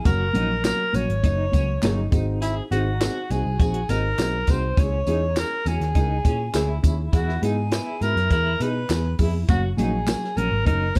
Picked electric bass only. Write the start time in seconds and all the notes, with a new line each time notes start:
0.05 F#1
0.35 A#1
0.94 A#1
1.08 G#1
1.24 F#1
1.53 C#2
1.83 G1
2.12 G#1
2.71 G#1
3.30 C2
3.45 C2
3.60 A#1
3.89 G#1
4.19 B1
4.48 C2
4.77 C#2
5.07 E2
5.66 E2
5.80 D#2
5.95 C#2
6.25 A#2
6.54 D2
6.84 D#2
7.13 E2
7.42 G#2
8.01 G#2
8.16 F#2
8.31 E2
8.60 B2
8.90 E2
9.19 F2
9.49 F#1
9.78 A#1
10.37 A#1
10.52 G#1
10.67 F#1
10.96 C#2